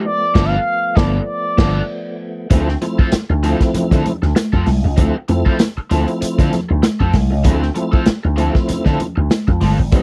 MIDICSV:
0, 0, Header, 1, 9, 480
1, 0, Start_track
1, 0, Tempo, 617920
1, 34, Time_signature, 4, 2, 24, 8
1, 7787, End_track
2, 0, Start_track
2, 0, Title_t, "Analog synth lead"
2, 0, Program_c, 0, 81
2, 39, Note_on_c, 0, 74, 108
2, 351, Note_on_c, 0, 77, 115
2, 362, Note_off_c, 0, 74, 0
2, 742, Note_on_c, 0, 74, 95
2, 754, Note_off_c, 0, 77, 0
2, 971, Note_off_c, 0, 74, 0
2, 976, Note_on_c, 0, 74, 87
2, 1670, Note_off_c, 0, 74, 0
2, 7787, End_track
3, 0, Start_track
3, 0, Title_t, "Overdriven electric guitar"
3, 0, Program_c, 1, 29
3, 267, Note_on_c, 1, 59, 109
3, 273, Note_on_c, 1, 65, 101
3, 280, Note_on_c, 1, 69, 105
3, 437, Note_off_c, 1, 59, 0
3, 440, Note_off_c, 1, 65, 0
3, 445, Note_off_c, 1, 69, 0
3, 742, Note_on_c, 1, 69, 94
3, 747, Note_on_c, 1, 65, 106
3, 754, Note_on_c, 1, 59, 93
3, 913, Note_off_c, 1, 69, 0
3, 916, Note_off_c, 1, 65, 0
3, 920, Note_off_c, 1, 59, 0
3, 1226, Note_on_c, 1, 59, 110
3, 1232, Note_on_c, 1, 65, 105
3, 1238, Note_on_c, 1, 69, 94
3, 1395, Note_off_c, 1, 59, 0
3, 1398, Note_off_c, 1, 65, 0
3, 1402, Note_off_c, 1, 69, 0
3, 1943, Note_on_c, 1, 60, 89
3, 1949, Note_on_c, 1, 65, 87
3, 1957, Note_on_c, 1, 69, 96
3, 2074, Note_off_c, 1, 69, 0
3, 2079, Note_off_c, 1, 65, 0
3, 2112, Note_off_c, 1, 60, 0
3, 2319, Note_on_c, 1, 69, 63
3, 2327, Note_on_c, 1, 65, 59
3, 2332, Note_on_c, 1, 60, 47
3, 2400, Note_off_c, 1, 69, 0
3, 2404, Note_off_c, 1, 65, 0
3, 2406, Note_off_c, 1, 60, 0
3, 2665, Note_on_c, 1, 60, 91
3, 2673, Note_on_c, 1, 65, 95
3, 2675, Note_on_c, 1, 69, 81
3, 2791, Note_off_c, 1, 69, 0
3, 2796, Note_off_c, 1, 60, 0
3, 2800, Note_off_c, 1, 65, 0
3, 3041, Note_on_c, 1, 69, 89
3, 3048, Note_on_c, 1, 65, 66
3, 3050, Note_on_c, 1, 60, 69
3, 3134, Note_off_c, 1, 60, 0
3, 3139, Note_off_c, 1, 65, 0
3, 3143, Note_off_c, 1, 69, 0
3, 3515, Note_on_c, 1, 69, 84
3, 3522, Note_on_c, 1, 65, 68
3, 3527, Note_on_c, 1, 60, 66
3, 3612, Note_off_c, 1, 60, 0
3, 3616, Note_off_c, 1, 65, 0
3, 3620, Note_off_c, 1, 69, 0
3, 3857, Note_on_c, 1, 60, 83
3, 3866, Note_on_c, 1, 65, 95
3, 3873, Note_on_c, 1, 69, 93
3, 3991, Note_off_c, 1, 69, 0
3, 3992, Note_off_c, 1, 60, 0
3, 3996, Note_off_c, 1, 65, 0
3, 4236, Note_on_c, 1, 69, 70
3, 4242, Note_on_c, 1, 65, 63
3, 4249, Note_on_c, 1, 60, 52
3, 4318, Note_off_c, 1, 69, 0
3, 4321, Note_off_c, 1, 65, 0
3, 4325, Note_off_c, 1, 60, 0
3, 4582, Note_on_c, 1, 60, 86
3, 4587, Note_on_c, 1, 65, 88
3, 4594, Note_on_c, 1, 69, 83
3, 4708, Note_off_c, 1, 69, 0
3, 4714, Note_off_c, 1, 60, 0
3, 4717, Note_off_c, 1, 65, 0
3, 4959, Note_on_c, 1, 69, 90
3, 4965, Note_on_c, 1, 65, 81
3, 4970, Note_on_c, 1, 60, 80
3, 5052, Note_off_c, 1, 60, 0
3, 5057, Note_off_c, 1, 65, 0
3, 5060, Note_off_c, 1, 69, 0
3, 5434, Note_on_c, 1, 69, 80
3, 5442, Note_on_c, 1, 65, 74
3, 5448, Note_on_c, 1, 60, 68
3, 5533, Note_off_c, 1, 60, 0
3, 5540, Note_off_c, 1, 69, 0
3, 5541, Note_off_c, 1, 65, 0
3, 5777, Note_on_c, 1, 60, 89
3, 5785, Note_on_c, 1, 65, 91
3, 5789, Note_on_c, 1, 69, 86
3, 5901, Note_off_c, 1, 69, 0
3, 5909, Note_off_c, 1, 65, 0
3, 5949, Note_off_c, 1, 60, 0
3, 6149, Note_on_c, 1, 69, 67
3, 6158, Note_on_c, 1, 65, 64
3, 6163, Note_on_c, 1, 60, 55
3, 6236, Note_off_c, 1, 69, 0
3, 6240, Note_off_c, 1, 65, 0
3, 6243, Note_off_c, 1, 60, 0
3, 6496, Note_on_c, 1, 60, 85
3, 6503, Note_on_c, 1, 65, 83
3, 6511, Note_on_c, 1, 69, 92
3, 6623, Note_off_c, 1, 69, 0
3, 6633, Note_off_c, 1, 60, 0
3, 6633, Note_off_c, 1, 65, 0
3, 6871, Note_on_c, 1, 69, 83
3, 6878, Note_on_c, 1, 65, 91
3, 6882, Note_on_c, 1, 60, 74
3, 6973, Note_off_c, 1, 60, 0
3, 6979, Note_off_c, 1, 65, 0
3, 6980, Note_off_c, 1, 69, 0
3, 7465, Note_on_c, 1, 60, 80
3, 7470, Note_on_c, 1, 65, 80
3, 7474, Note_on_c, 1, 69, 91
3, 7588, Note_off_c, 1, 69, 0
3, 7597, Note_off_c, 1, 65, 0
3, 7598, Note_off_c, 1, 60, 0
3, 7707, Note_on_c, 1, 60, 87
3, 7716, Note_on_c, 1, 67, 81
3, 7719, Note_on_c, 1, 69, 101
3, 7787, Note_off_c, 1, 60, 0
3, 7787, Note_off_c, 1, 67, 0
3, 7787, Note_off_c, 1, 69, 0
3, 7787, End_track
4, 0, Start_track
4, 0, Title_t, "Tonewheel organ"
4, 0, Program_c, 2, 16
4, 268, Note_on_c, 2, 53, 96
4, 270, Note_on_c, 2, 57, 101
4, 270, Note_on_c, 2, 59, 100
4, 273, Note_on_c, 2, 62, 91
4, 438, Note_off_c, 2, 53, 0
4, 439, Note_off_c, 2, 57, 0
4, 439, Note_off_c, 2, 59, 0
4, 440, Note_off_c, 2, 62, 0
4, 745, Note_on_c, 2, 53, 90
4, 745, Note_on_c, 2, 57, 99
4, 747, Note_on_c, 2, 59, 97
4, 801, Note_on_c, 2, 62, 111
4, 915, Note_off_c, 2, 53, 0
4, 915, Note_off_c, 2, 57, 0
4, 916, Note_off_c, 2, 59, 0
4, 947, Note_off_c, 2, 62, 0
4, 1220, Note_on_c, 2, 53, 104
4, 1223, Note_on_c, 2, 57, 98
4, 1224, Note_on_c, 2, 59, 105
4, 1278, Note_on_c, 2, 62, 96
4, 1392, Note_off_c, 2, 53, 0
4, 1393, Note_off_c, 2, 57, 0
4, 1394, Note_off_c, 2, 59, 0
4, 1425, Note_off_c, 2, 62, 0
4, 1941, Note_on_c, 2, 53, 81
4, 1943, Note_on_c, 2, 60, 80
4, 1944, Note_on_c, 2, 57, 78
4, 1947, Note_on_c, 2, 64, 96
4, 2090, Note_off_c, 2, 53, 0
4, 2092, Note_off_c, 2, 57, 0
4, 2092, Note_off_c, 2, 60, 0
4, 2093, Note_off_c, 2, 64, 0
4, 2185, Note_on_c, 2, 53, 81
4, 2188, Note_on_c, 2, 57, 75
4, 2188, Note_on_c, 2, 60, 70
4, 2189, Note_on_c, 2, 64, 79
4, 2456, Note_off_c, 2, 53, 0
4, 2458, Note_off_c, 2, 57, 0
4, 2458, Note_off_c, 2, 60, 0
4, 2458, Note_off_c, 2, 64, 0
4, 2664, Note_on_c, 2, 53, 89
4, 2667, Note_on_c, 2, 57, 78
4, 2670, Note_on_c, 2, 60, 75
4, 2670, Note_on_c, 2, 63, 79
4, 2721, Note_on_c, 2, 64, 100
4, 2725, Note_off_c, 2, 63, 0
4, 3206, Note_off_c, 2, 53, 0
4, 3208, Note_off_c, 2, 57, 0
4, 3209, Note_off_c, 2, 60, 0
4, 3235, Note_off_c, 2, 64, 0
4, 3867, Note_on_c, 2, 53, 83
4, 3871, Note_on_c, 2, 57, 75
4, 3872, Note_on_c, 2, 60, 79
4, 3872, Note_on_c, 2, 64, 94
4, 4013, Note_off_c, 2, 53, 0
4, 4015, Note_off_c, 2, 57, 0
4, 4015, Note_off_c, 2, 60, 0
4, 4015, Note_off_c, 2, 64, 0
4, 4109, Note_on_c, 2, 53, 77
4, 4110, Note_on_c, 2, 57, 69
4, 4113, Note_on_c, 2, 60, 67
4, 4113, Note_on_c, 2, 64, 90
4, 4378, Note_off_c, 2, 53, 0
4, 4379, Note_off_c, 2, 57, 0
4, 4380, Note_off_c, 2, 60, 0
4, 4380, Note_off_c, 2, 64, 0
4, 4589, Note_on_c, 2, 53, 93
4, 4591, Note_on_c, 2, 57, 81
4, 4592, Note_on_c, 2, 60, 79
4, 4595, Note_on_c, 2, 64, 99
4, 5129, Note_off_c, 2, 53, 0
4, 5130, Note_off_c, 2, 57, 0
4, 5131, Note_off_c, 2, 60, 0
4, 5132, Note_off_c, 2, 64, 0
4, 5781, Note_on_c, 2, 53, 89
4, 5782, Note_on_c, 2, 57, 73
4, 5786, Note_on_c, 2, 64, 90
4, 5787, Note_on_c, 2, 60, 85
4, 5931, Note_off_c, 2, 53, 0
4, 5931, Note_off_c, 2, 57, 0
4, 5933, Note_off_c, 2, 60, 0
4, 5933, Note_off_c, 2, 64, 0
4, 6019, Note_on_c, 2, 53, 78
4, 6020, Note_on_c, 2, 57, 70
4, 6023, Note_on_c, 2, 60, 81
4, 6025, Note_on_c, 2, 64, 98
4, 6294, Note_off_c, 2, 53, 0
4, 6295, Note_off_c, 2, 57, 0
4, 6297, Note_off_c, 2, 60, 0
4, 6297, Note_off_c, 2, 64, 0
4, 6499, Note_on_c, 2, 53, 91
4, 6502, Note_on_c, 2, 57, 81
4, 6506, Note_on_c, 2, 60, 74
4, 6507, Note_on_c, 2, 64, 93
4, 7046, Note_off_c, 2, 53, 0
4, 7047, Note_off_c, 2, 57, 0
4, 7050, Note_off_c, 2, 60, 0
4, 7050, Note_off_c, 2, 64, 0
4, 7703, Note_on_c, 2, 55, 83
4, 7704, Note_on_c, 2, 59, 75
4, 7704, Note_on_c, 2, 60, 81
4, 7709, Note_on_c, 2, 64, 96
4, 7787, Note_off_c, 2, 55, 0
4, 7787, Note_off_c, 2, 59, 0
4, 7787, Note_off_c, 2, 60, 0
4, 7787, Note_off_c, 2, 64, 0
4, 7787, End_track
5, 0, Start_track
5, 0, Title_t, "Tonewheel organ"
5, 0, Program_c, 3, 16
5, 0, Note_on_c, 3, 53, 77
5, 38, Note_on_c, 3, 57, 68
5, 38, Note_on_c, 3, 59, 59
5, 1918, Note_off_c, 3, 53, 0
5, 1930, Note_off_c, 3, 57, 0
5, 1930, Note_off_c, 3, 59, 0
5, 7787, End_track
6, 0, Start_track
6, 0, Title_t, "Slap bass"
6, 0, Program_c, 4, 36
6, 276, Note_on_c, 4, 31, 101
6, 442, Note_off_c, 4, 31, 0
6, 754, Note_on_c, 4, 31, 105
6, 920, Note_off_c, 4, 31, 0
6, 1231, Note_on_c, 4, 31, 109
6, 1398, Note_off_c, 4, 31, 0
6, 1951, Note_on_c, 4, 38, 106
6, 2133, Note_off_c, 4, 38, 0
6, 2561, Note_on_c, 4, 38, 81
6, 2745, Note_off_c, 4, 38, 0
6, 3041, Note_on_c, 4, 50, 88
6, 3122, Note_off_c, 4, 50, 0
6, 3282, Note_on_c, 4, 38, 85
6, 3362, Note_off_c, 4, 38, 0
6, 3521, Note_on_c, 4, 41, 98
6, 3602, Note_off_c, 4, 41, 0
6, 3630, Note_on_c, 4, 36, 90
6, 3731, Note_off_c, 4, 36, 0
6, 3766, Note_on_c, 4, 37, 80
6, 3845, Note_off_c, 4, 37, 0
6, 3868, Note_on_c, 4, 38, 112
6, 3970, Note_off_c, 4, 38, 0
6, 4110, Note_on_c, 4, 41, 95
6, 4211, Note_off_c, 4, 41, 0
6, 4591, Note_on_c, 4, 38, 90
6, 4692, Note_off_c, 4, 38, 0
6, 4965, Note_on_c, 4, 50, 89
6, 5044, Note_off_c, 4, 50, 0
6, 5208, Note_on_c, 4, 38, 92
6, 5286, Note_off_c, 4, 38, 0
6, 5443, Note_on_c, 4, 41, 97
6, 5523, Note_off_c, 4, 41, 0
6, 5546, Note_on_c, 4, 36, 94
6, 5687, Note_off_c, 4, 36, 0
6, 5687, Note_on_c, 4, 37, 89
6, 5766, Note_off_c, 4, 37, 0
6, 5786, Note_on_c, 4, 38, 104
6, 5971, Note_off_c, 4, 38, 0
6, 6406, Note_on_c, 4, 38, 90
6, 6589, Note_off_c, 4, 38, 0
6, 6883, Note_on_c, 4, 50, 88
6, 6964, Note_off_c, 4, 50, 0
6, 7125, Note_on_c, 4, 38, 84
6, 7206, Note_off_c, 4, 38, 0
6, 7366, Note_on_c, 4, 41, 101
6, 7446, Note_off_c, 4, 41, 0
6, 7469, Note_on_c, 4, 31, 98
6, 7572, Note_off_c, 4, 31, 0
6, 7604, Note_on_c, 4, 32, 79
6, 7711, Note_off_c, 4, 32, 0
6, 7711, Note_on_c, 4, 33, 92
6, 7787, Note_off_c, 4, 33, 0
6, 7787, End_track
7, 0, Start_track
7, 0, Title_t, "Muted overdriven electric guitar strokes"
7, 2083, Note_on_c, 9, 29, 37
7, 2161, Note_off_c, 9, 29, 0
7, 2189, Note_on_c, 9, 29, 43
7, 2267, Note_off_c, 9, 29, 0
7, 2561, Note_on_c, 9, 29, 44
7, 2638, Note_off_c, 9, 29, 0
7, 2801, Note_on_c, 9, 29, 45
7, 2878, Note_off_c, 9, 29, 0
7, 2906, Note_on_c, 9, 29, 38
7, 2984, Note_off_c, 9, 29, 0
7, 3143, Note_on_c, 9, 29, 44
7, 3221, Note_off_c, 9, 29, 0
7, 3278, Note_on_c, 9, 29, 46
7, 3356, Note_off_c, 9, 29, 0
7, 3382, Note_on_c, 9, 29, 47
7, 3460, Note_off_c, 9, 29, 0
7, 3622, Note_on_c, 9, 29, 46
7, 3699, Note_off_c, 9, 29, 0
7, 3761, Note_on_c, 9, 29, 46
7, 3839, Note_off_c, 9, 29, 0
7, 4000, Note_on_c, 9, 29, 46
7, 4078, Note_off_c, 9, 29, 0
7, 4104, Note_on_c, 9, 29, 50
7, 4182, Note_off_c, 9, 29, 0
7, 4483, Note_on_c, 9, 29, 47
7, 4561, Note_off_c, 9, 29, 0
7, 4717, Note_on_c, 9, 29, 41
7, 4795, Note_off_c, 9, 29, 0
7, 4826, Note_on_c, 9, 29, 53
7, 4904, Note_off_c, 9, 29, 0
7, 5062, Note_on_c, 9, 29, 46
7, 5139, Note_off_c, 9, 29, 0
7, 5195, Note_on_c, 9, 29, 45
7, 5273, Note_off_c, 9, 29, 0
7, 5302, Note_on_c, 9, 29, 50
7, 5380, Note_off_c, 9, 29, 0
7, 5542, Note_on_c, 9, 29, 43
7, 5620, Note_off_c, 9, 29, 0
7, 5674, Note_on_c, 9, 29, 43
7, 5752, Note_off_c, 9, 29, 0
7, 5910, Note_on_c, 9, 29, 36
7, 5988, Note_off_c, 9, 29, 0
7, 6018, Note_on_c, 9, 29, 42
7, 6095, Note_off_c, 9, 29, 0
7, 6396, Note_on_c, 9, 29, 51
7, 6474, Note_off_c, 9, 29, 0
7, 6632, Note_on_c, 9, 29, 44
7, 6710, Note_off_c, 9, 29, 0
7, 6743, Note_on_c, 9, 29, 39
7, 6821, Note_off_c, 9, 29, 0
7, 6982, Note_on_c, 9, 29, 38
7, 7060, Note_off_c, 9, 29, 0
7, 7113, Note_on_c, 9, 29, 43
7, 7191, Note_off_c, 9, 29, 0
7, 7359, Note_on_c, 9, 29, 40
7, 7436, Note_off_c, 9, 29, 0
7, 7597, Note_on_c, 9, 29, 51
7, 7675, Note_off_c, 9, 29, 0
7, 7787, End_track
8, 0, Start_track
8, 0, Title_t, "Muted slap bass strokes"
8, 2323, Note_on_c, 9, 29, 47
8, 2401, Note_off_c, 9, 29, 0
8, 2432, Note_on_c, 9, 29, 54
8, 2510, Note_off_c, 9, 29, 0
8, 2907, Note_on_c, 9, 29, 52
8, 2985, Note_off_c, 9, 29, 0
8, 4486, Note_on_c, 9, 29, 50
8, 4564, Note_off_c, 9, 29, 0
8, 4835, Note_on_c, 9, 29, 50
8, 4912, Note_off_c, 9, 29, 0
8, 6163, Note_on_c, 9, 29, 52
8, 6241, Note_off_c, 9, 29, 0
8, 6274, Note_on_c, 9, 29, 47
8, 6352, Note_off_c, 9, 29, 0
8, 6756, Note_on_c, 9, 29, 50
8, 6834, Note_off_c, 9, 29, 0
8, 7787, End_track
9, 0, Start_track
9, 0, Title_t, "Drums"
9, 274, Note_on_c, 9, 36, 107
9, 276, Note_on_c, 9, 49, 88
9, 278, Note_on_c, 9, 38, 109
9, 351, Note_off_c, 9, 36, 0
9, 353, Note_off_c, 9, 49, 0
9, 356, Note_off_c, 9, 38, 0
9, 751, Note_on_c, 9, 36, 121
9, 756, Note_on_c, 9, 38, 118
9, 829, Note_off_c, 9, 36, 0
9, 834, Note_off_c, 9, 38, 0
9, 1229, Note_on_c, 9, 36, 119
9, 1229, Note_on_c, 9, 49, 85
9, 1231, Note_on_c, 9, 38, 118
9, 1306, Note_off_c, 9, 36, 0
9, 1307, Note_off_c, 9, 49, 0
9, 1309, Note_off_c, 9, 38, 0
9, 1945, Note_on_c, 9, 42, 83
9, 1947, Note_on_c, 9, 36, 107
9, 1953, Note_on_c, 9, 62, 46
9, 2023, Note_off_c, 9, 42, 0
9, 2025, Note_off_c, 9, 36, 0
9, 2030, Note_off_c, 9, 62, 0
9, 2086, Note_on_c, 9, 38, 36
9, 2164, Note_off_c, 9, 38, 0
9, 2188, Note_on_c, 9, 42, 71
9, 2190, Note_on_c, 9, 62, 55
9, 2266, Note_off_c, 9, 42, 0
9, 2267, Note_off_c, 9, 62, 0
9, 2322, Note_on_c, 9, 36, 97
9, 2400, Note_off_c, 9, 36, 0
9, 2421, Note_on_c, 9, 42, 95
9, 2427, Note_on_c, 9, 38, 121
9, 2436, Note_on_c, 9, 63, 78
9, 2499, Note_off_c, 9, 42, 0
9, 2505, Note_off_c, 9, 38, 0
9, 2513, Note_off_c, 9, 63, 0
9, 2669, Note_on_c, 9, 42, 77
9, 2747, Note_off_c, 9, 42, 0
9, 2801, Note_on_c, 9, 36, 85
9, 2801, Note_on_c, 9, 42, 41
9, 2803, Note_on_c, 9, 38, 33
9, 2878, Note_off_c, 9, 36, 0
9, 2879, Note_off_c, 9, 42, 0
9, 2881, Note_off_c, 9, 38, 0
9, 2909, Note_on_c, 9, 42, 92
9, 2923, Note_on_c, 9, 64, 74
9, 2987, Note_off_c, 9, 42, 0
9, 3001, Note_off_c, 9, 64, 0
9, 3040, Note_on_c, 9, 36, 93
9, 3040, Note_on_c, 9, 38, 37
9, 3045, Note_on_c, 9, 42, 48
9, 3118, Note_off_c, 9, 36, 0
9, 3118, Note_off_c, 9, 38, 0
9, 3123, Note_off_c, 9, 42, 0
9, 3151, Note_on_c, 9, 42, 73
9, 3155, Note_on_c, 9, 62, 56
9, 3155, Note_on_c, 9, 64, 78
9, 3229, Note_off_c, 9, 42, 0
9, 3233, Note_off_c, 9, 62, 0
9, 3233, Note_off_c, 9, 64, 0
9, 3279, Note_on_c, 9, 38, 34
9, 3357, Note_off_c, 9, 38, 0
9, 3387, Note_on_c, 9, 38, 123
9, 3389, Note_on_c, 9, 63, 75
9, 3392, Note_on_c, 9, 42, 97
9, 3465, Note_off_c, 9, 38, 0
9, 3466, Note_off_c, 9, 63, 0
9, 3469, Note_off_c, 9, 42, 0
9, 3519, Note_on_c, 9, 36, 82
9, 3597, Note_off_c, 9, 36, 0
9, 3622, Note_on_c, 9, 63, 82
9, 3623, Note_on_c, 9, 46, 76
9, 3625, Note_on_c, 9, 38, 46
9, 3700, Note_off_c, 9, 46, 0
9, 3700, Note_off_c, 9, 63, 0
9, 3703, Note_off_c, 9, 38, 0
9, 3766, Note_on_c, 9, 63, 55
9, 3844, Note_off_c, 9, 63, 0
9, 3864, Note_on_c, 9, 42, 86
9, 3866, Note_on_c, 9, 36, 107
9, 3880, Note_on_c, 9, 62, 52
9, 3942, Note_off_c, 9, 42, 0
9, 3944, Note_off_c, 9, 36, 0
9, 3957, Note_off_c, 9, 62, 0
9, 4104, Note_on_c, 9, 42, 68
9, 4115, Note_on_c, 9, 62, 58
9, 4182, Note_off_c, 9, 42, 0
9, 4193, Note_off_c, 9, 62, 0
9, 4242, Note_on_c, 9, 36, 89
9, 4319, Note_off_c, 9, 36, 0
9, 4343, Note_on_c, 9, 42, 91
9, 4349, Note_on_c, 9, 38, 122
9, 4358, Note_on_c, 9, 63, 83
9, 4420, Note_off_c, 9, 42, 0
9, 4426, Note_off_c, 9, 38, 0
9, 4436, Note_off_c, 9, 63, 0
9, 4588, Note_on_c, 9, 38, 41
9, 4589, Note_on_c, 9, 42, 75
9, 4594, Note_on_c, 9, 62, 43
9, 4666, Note_off_c, 9, 38, 0
9, 4667, Note_off_c, 9, 42, 0
9, 4672, Note_off_c, 9, 62, 0
9, 4721, Note_on_c, 9, 42, 42
9, 4799, Note_off_c, 9, 42, 0
9, 4830, Note_on_c, 9, 42, 101
9, 4908, Note_off_c, 9, 42, 0
9, 4961, Note_on_c, 9, 36, 91
9, 4961, Note_on_c, 9, 38, 38
9, 4966, Note_on_c, 9, 42, 50
9, 5038, Note_off_c, 9, 36, 0
9, 5038, Note_off_c, 9, 38, 0
9, 5043, Note_off_c, 9, 42, 0
9, 5068, Note_on_c, 9, 38, 38
9, 5071, Note_on_c, 9, 42, 69
9, 5079, Note_on_c, 9, 62, 47
9, 5079, Note_on_c, 9, 64, 64
9, 5146, Note_off_c, 9, 38, 0
9, 5148, Note_off_c, 9, 42, 0
9, 5157, Note_off_c, 9, 62, 0
9, 5157, Note_off_c, 9, 64, 0
9, 5305, Note_on_c, 9, 63, 78
9, 5306, Note_on_c, 9, 38, 112
9, 5310, Note_on_c, 9, 42, 93
9, 5383, Note_off_c, 9, 63, 0
9, 5384, Note_off_c, 9, 38, 0
9, 5388, Note_off_c, 9, 42, 0
9, 5440, Note_on_c, 9, 36, 82
9, 5518, Note_off_c, 9, 36, 0
9, 5538, Note_on_c, 9, 63, 72
9, 5541, Note_on_c, 9, 46, 78
9, 5544, Note_on_c, 9, 36, 105
9, 5544, Note_on_c, 9, 38, 46
9, 5616, Note_off_c, 9, 63, 0
9, 5619, Note_off_c, 9, 46, 0
9, 5621, Note_off_c, 9, 36, 0
9, 5622, Note_off_c, 9, 38, 0
9, 5685, Note_on_c, 9, 63, 59
9, 5763, Note_off_c, 9, 63, 0
9, 5782, Note_on_c, 9, 42, 82
9, 5786, Note_on_c, 9, 36, 125
9, 5797, Note_on_c, 9, 62, 51
9, 5859, Note_off_c, 9, 42, 0
9, 5863, Note_off_c, 9, 36, 0
9, 5874, Note_off_c, 9, 62, 0
9, 5922, Note_on_c, 9, 38, 38
9, 6000, Note_off_c, 9, 38, 0
9, 6024, Note_on_c, 9, 42, 65
9, 6032, Note_on_c, 9, 62, 53
9, 6101, Note_off_c, 9, 42, 0
9, 6110, Note_off_c, 9, 62, 0
9, 6162, Note_on_c, 9, 36, 94
9, 6240, Note_off_c, 9, 36, 0
9, 6258, Note_on_c, 9, 42, 90
9, 6264, Note_on_c, 9, 38, 113
9, 6276, Note_on_c, 9, 63, 79
9, 6336, Note_off_c, 9, 42, 0
9, 6342, Note_off_c, 9, 38, 0
9, 6354, Note_off_c, 9, 63, 0
9, 6509, Note_on_c, 9, 42, 75
9, 6516, Note_on_c, 9, 62, 42
9, 6587, Note_off_c, 9, 42, 0
9, 6593, Note_off_c, 9, 62, 0
9, 6641, Note_on_c, 9, 36, 85
9, 6641, Note_on_c, 9, 38, 28
9, 6719, Note_off_c, 9, 36, 0
9, 6719, Note_off_c, 9, 38, 0
9, 6748, Note_on_c, 9, 42, 100
9, 6768, Note_on_c, 9, 64, 77
9, 6825, Note_off_c, 9, 42, 0
9, 6846, Note_off_c, 9, 64, 0
9, 6878, Note_on_c, 9, 38, 34
9, 6881, Note_on_c, 9, 36, 83
9, 6955, Note_off_c, 9, 38, 0
9, 6958, Note_off_c, 9, 36, 0
9, 6990, Note_on_c, 9, 42, 81
9, 6996, Note_on_c, 9, 62, 50
9, 6996, Note_on_c, 9, 64, 71
9, 7068, Note_off_c, 9, 42, 0
9, 7074, Note_off_c, 9, 62, 0
9, 7074, Note_off_c, 9, 64, 0
9, 7224, Note_on_c, 9, 63, 71
9, 7230, Note_on_c, 9, 38, 111
9, 7235, Note_on_c, 9, 42, 89
9, 7302, Note_off_c, 9, 63, 0
9, 7308, Note_off_c, 9, 38, 0
9, 7312, Note_off_c, 9, 42, 0
9, 7363, Note_on_c, 9, 36, 88
9, 7441, Note_off_c, 9, 36, 0
9, 7464, Note_on_c, 9, 63, 80
9, 7465, Note_on_c, 9, 46, 79
9, 7468, Note_on_c, 9, 38, 41
9, 7542, Note_off_c, 9, 63, 0
9, 7543, Note_off_c, 9, 46, 0
9, 7546, Note_off_c, 9, 38, 0
9, 7605, Note_on_c, 9, 63, 54
9, 7683, Note_off_c, 9, 63, 0
9, 7707, Note_on_c, 9, 42, 88
9, 7710, Note_on_c, 9, 36, 120
9, 7718, Note_on_c, 9, 62, 46
9, 7785, Note_off_c, 9, 42, 0
9, 7787, Note_off_c, 9, 36, 0
9, 7787, Note_off_c, 9, 62, 0
9, 7787, End_track
0, 0, End_of_file